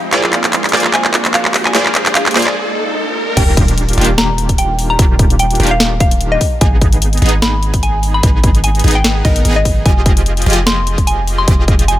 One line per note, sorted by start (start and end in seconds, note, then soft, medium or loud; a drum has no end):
0.00 3.33 G#3 medium
0.00 3.33 A#3 medium
0.00 3.34 D4 medium
0.00 riser medium
0.12 0.72 A#1 medium
0.12 0.71 A#3 medium
0.12 0.71 F4 medium
0.12 0.71 G#4 medium
0.12 0.71 C5 medium
0.12 0.71 D5 loud
0.12 0.25 F5 loud
0.12 clap medium
0.12 closed hi-hat medium
0.24 clap medium
0.33 clap medium
0.33 closed hi-hat medium
0.44 clap medium
0.44 closed hi-hat medium
0.53 clap medium
0.53 closed hi-hat medium
0.64 clap medium
0.64 closed hi-hat soft
0.69 closed hi-hat medium
0.73 1.73 A#1 loud
0.73 1.73 A#3 loud
0.73 1.73 F4 medium
0.73 1.73 G#4 medium
0.73 1.73 C5 medium
0.73 1.73 D5 loud
0.73 clap medium
0.73 closed hi-hat soft
0.77 closed hi-hat medium
0.80 closed hi-hat medium
0.84 clap medium
0.94 1.17 G#5 medium
0.94 clap loud
0.94 closed hi-hat medium
1.05 clap medium
1.14 clap loud
1.14 closed hi-hat medium
1.25 clap medium
1.25 closed hi-hat medium
1.34 1.52 F5 loud
1.34 clap medium
1.34 closed hi-hat medium
1.45 clap medium
1.54 clap loud
1.54 open hi-hat medium
1.65 1.83 G#5 loud
1.65 clap medium
1.75 2.34 A#1 medium
1.75 2.33 A#3 medium
1.75 2.33 F4 medium
1.75 2.33 G#4 medium
1.75 2.33 C5 medium
1.75 2.33 D5 loud
1.75 clap loud
1.75 closed hi-hat medium
1.86 clap medium
1.95 clap loud
1.95 closed hi-hat medium
2.06 clap medium
2.06 closed hi-hat medium
2.15 2.33 F5 medium
2.15 clap loud
2.15 closed hi-hat medium
2.26 clap medium
2.26 closed hi-hat medium
2.31 closed hi-hat medium
2.35 2.56 A#1 loud
2.35 2.56 A#3 loud
2.35 2.56 F4 medium
2.35 2.56 G#4 medium
2.35 2.56 C5 medium
2.35 2.56 D5 loud
2.35 clap loud
2.35 closed hi-hat soft
2.39 closed hi-hat medium
2.42 closed hi-hat medium
2.47 2.56 D5 medium
2.47 clap medium
2.56 swell medium
3.37 3.96 D#1 loud
3.37 3.96 D#3 medium
3.37 3.96 A#3 medium
3.37 3.96 D4 medium
3.37 3.95 F4 medium
3.37 3.96 G4 loud
3.37 3.49 G5 loud
3.37 kick loud
3.37 closed hi-hat medium
3.37 crash loud
3.37 sub drop medium
3.57 kick loud
3.57 closed hi-hat medium
3.68 closed hi-hat medium
3.78 closed hi-hat medium
3.89 closed hi-hat medium
3.93 closed hi-hat medium
3.98 4.97 D#1 loud
3.98 4.97 D#3 loud
3.98 4.97 A#3 medium
3.98 4.97 D4 medium
3.98 4.97 F4 medium
3.98 4.97 G4 loud
3.98 closed hi-hat soft
4.01 closed hi-hat medium
4.04 closed hi-hat medium
4.18 4.41 A#5 medium
4.18 snare loud
4.18 closed hi-hat medium
4.38 closed hi-hat medium
4.49 kick medium
4.49 closed hi-hat medium
4.58 4.76 G5 medium
4.58 closed hi-hat medium
4.79 open hi-hat loud
4.90 5.07 A#5 loud
4.99 5.58 D#1 loud
4.99 5.58 D#3 medium
4.99 5.58 A#3 medium
4.99 5.58 D4 medium
4.99 5.58 F4 medium
4.99 5.58 G4 loud
4.99 kick loud
4.99 closed hi-hat medium
5.19 kick loud
5.19 closed hi-hat medium
5.30 closed hi-hat medium
5.39 5.57 G5 medium
5.39 closed hi-hat medium
5.51 closed hi-hat medium
5.55 closed hi-hat medium
5.60 6.38 D#1 loud
5.60 6.40 D#3 loud
5.60 6.40 A#3 medium
5.60 6.40 D4 medium
5.60 6.40 F4 medium
5.60 6.40 G4 loud
5.60 closed hi-hat soft
5.63 closed hi-hat medium
5.67 closed hi-hat medium
5.71 5.88 F5 loud
5.80 snare loud
5.80 closed hi-hat medium
6.00 6.18 F5 medium
6.00 kick loud
6.00 closed hi-hat medium
6.11 closed hi-hat medium
6.21 closed hi-hat medium
6.32 6.49 D#5 medium
6.41 kick medium
6.41 open hi-hat medium
6.61 7.20 G#1 medium
6.61 7.20 B3 medium
6.61 7.20 D#4 medium
6.61 7.20 G#4 loud
6.61 6.74 G#5 loud
6.61 kick loud
6.61 closed hi-hat medium
6.81 kick loud
6.81 closed hi-hat medium
6.93 closed hi-hat medium
7.02 closed hi-hat medium
7.13 closed hi-hat medium
7.17 closed hi-hat medium
7.22 8.22 G#1 loud
7.22 8.21 B3 loud
7.22 8.21 D#4 medium
7.22 8.21 G#4 loud
7.22 closed hi-hat soft
7.26 closed hi-hat medium
7.29 closed hi-hat medium
7.42 7.66 B5 medium
7.42 snare loud
7.42 closed hi-hat medium
7.63 closed hi-hat medium
7.74 kick medium
7.74 closed hi-hat medium
7.83 8.00 G#5 medium
7.83 closed hi-hat medium
8.03 open hi-hat medium
8.14 8.31 B5 medium
8.23 8.82 G#1 loud
8.23 8.82 B3 medium
8.23 8.82 D#4 medium
8.23 8.82 G#4 loud
8.23 kick loud
8.23 closed hi-hat medium
8.44 kick loud
8.44 closed hi-hat medium
8.55 closed hi-hat medium
8.64 8.82 G#5 medium
8.64 closed hi-hat medium
8.75 closed hi-hat medium
8.79 closed hi-hat medium
8.84 9.23 G#1 loud
8.84 9.23 B3 loud
8.84 9.23 D#4 medium
8.84 9.23 G#4 loud
8.84 closed hi-hat soft
8.88 closed hi-hat medium
8.91 closed hi-hat medium
8.95 9.12 G5 loud
9.04 snare loud
9.04 closed hi-hat medium
9.25 9.43 G#1 loud
9.25 9.43 B3 medium
9.25 9.43 D#4 medium
9.25 9.43 A#4 medium
9.25 9.42 D#5 loud
9.25 kick loud
9.25 closed hi-hat medium
9.36 closed hi-hat medium
9.45 9.84 G#1 loud
9.45 9.83 B3 medium
9.45 9.83 D#4 medium
9.45 9.83 G#4 medium
9.45 closed hi-hat medium
9.56 9.73 D#5 medium
9.65 kick medium
9.65 open hi-hat medium
9.85 10.45 F1 medium
9.85 10.44 F3 medium
9.85 10.44 F4 medium
9.85 10.44 G4 medium
9.85 10.44 G#4 medium
9.85 10.44 D#5 loud
9.85 9.98 G#5 loud
9.85 kick loud
9.85 closed hi-hat medium
10.06 kick loud
10.06 closed hi-hat medium
10.17 closed hi-hat medium
10.26 closed hi-hat medium
10.37 closed hi-hat soft
10.42 closed hi-hat medium
10.46 11.46 F1 loud
10.46 11.46 F3 loud
10.46 11.46 F4 medium
10.46 11.46 G4 medium
10.46 11.46 G#4 medium
10.46 11.46 D#5 loud
10.46 closed hi-hat soft
10.50 closed hi-hat medium
10.53 closed hi-hat medium
10.67 10.90 C6 medium
10.67 snare loud
10.67 closed hi-hat medium
10.87 closed hi-hat medium
10.98 kick medium
10.98 closed hi-hat medium
11.07 11.25 G#5 medium
11.07 closed hi-hat medium
11.27 open hi-hat medium
11.38 11.55 C6 medium
11.48 11.99 F1 loud
11.48 11.99 F3 medium
11.48 11.99 F4 medium
11.48 11.99 G4 medium
11.48 11.99 G#4 medium
11.48 11.99 D#5 loud
11.48 kick loud
11.48 closed hi-hat medium
11.68 kick loud
11.68 closed hi-hat medium
11.79 closed hi-hat medium
11.88 11.99 G#5 medium
11.88 closed hi-hat medium